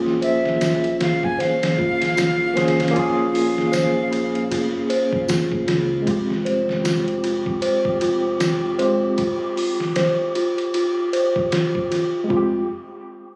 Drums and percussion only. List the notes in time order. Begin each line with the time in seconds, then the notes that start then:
0.06 snare
0.22 ride
0.45 snare
0.61 snare, ride, tambourine
0.84 ride
1.01 snare, ride
1.23 kick
1.40 snare, ride
1.63 snare, ride
1.79 kick
2.02 snare, ride
2.17 snare, ride, tambourine
2.57 snare, ride
2.68 snare, ride
2.80 snare, ride
2.88 snare, ride
2.96 kick, ride
3.35 open hi-hat
3.58 snare
3.73 snare, ride, tambourine
4.13 ride
4.35 ride
4.52 ride
4.90 ride
5.13 kick
5.28 snare, ride, tambourine
5.52 kick
5.68 snare, ride
6.07 kick, ride
6.30 snare
6.46 ride
6.69 snare
6.85 snare, ride, tambourine
7.08 ride
7.24 ride
7.46 kick
7.62 ride
7.85 kick
8.01 ride
8.40 snare, ride, tambourine
8.79 ride
9.18 kick, ride
9.57 open hi-hat
9.80 snare
9.96 snare, ride
10.35 ride
10.58 ride
10.74 ride
11.13 ride
11.36 kick
11.52 snare, ride
11.75 kick
11.92 snare, ride
12.30 kick